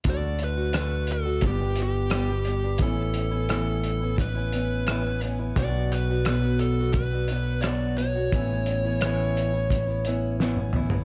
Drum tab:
HH |x-x-x-x-x-x-x-x-|x-x-x-x-x-x-x-x-|x-x-x-x-x-x-x-x-|x-x-x-x-x-x-----|
SD |----r-------r---|----r-------r---|----r-------r---|----r-------o---|
T1 |----------------|----------------|----------------|-------------o--|
T2 |----------------|----------------|----------------|--------------o-|
FT |----------------|----------------|----------------|---------------o|
BD |o-------o-------|o-------o-------|o-------o-------|o-------o-------|